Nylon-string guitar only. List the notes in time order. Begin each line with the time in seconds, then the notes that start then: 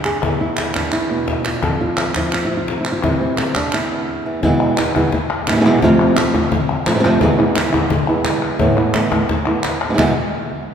Already playing: G2 D3 G3
0.05 G#4
0.23 E2 B3
0.41 E4
0.75 E3 D4
0.93 E4
1.11 B2 B3
1.45 E2 F4
1.63 F2 A4
1.81 F4
2.16 F3 E4
2.34 F4
2.45 E4
2.51 C3 C4
2.57 F4
2.81 E4
2.92 F4
3.03 C3 E3 G3 C4 E4
3.21 C4
3.39 C3
3.56 D3 D4
3.74 E2 E4
3.92 B3
4.26 E3
4.42 E2 B2 E3 G#3 B3 E4
4.77 E3 G#3 B3 E4
4.95 E3 G#3 B3 E4
5.13 muted nylon-string guitar stroke
5.48 E3 G#3 B3 E4
5.52 B2 E3 G#3 B3 E4
5.56 B2 E3 G#3 B3 E4
5.61 B2 E3 G#3 B3 E4
5.65 E2 B2 E3 G#3 B3 E4
5.82 F2 C3 F3 A3 C4 F4
6.16 F3 A3 C4 F4
6.34 F3 A3 C4 F4
6.51 muted nylon-string guitar stroke
6.86 F3 A3 C4 F4
6.95 C3 F3 A3 C4 F4
7.00 C3 F3 A3 C4 F4
7.04 F2 C3 F3 A3 C4 F4
7.21 E2 B2 E3 G#3 B3 E4
7.38 E3 G#3 B3 E4
7.55 E3 G#3 B3 E4
7.72 E3 G#3 B3 E4
7.91 muted nylon-string guitar stroke
8.08 E3 G#3 B3 E4
8.59 A2 E3 A3 B3 E4
8.77 A3 B3 E4
8.94 E3 A3 B3 E4
9.11 A3 B3 E4
9.30 muted nylon-string guitar stroke
9.46 A3 B3 E4
9.89 B2 E3 G#3 B3 E4
9.94 B2 E3 G#3 B3 E4
9.98 E2 B2 E3 G#3 B3 E4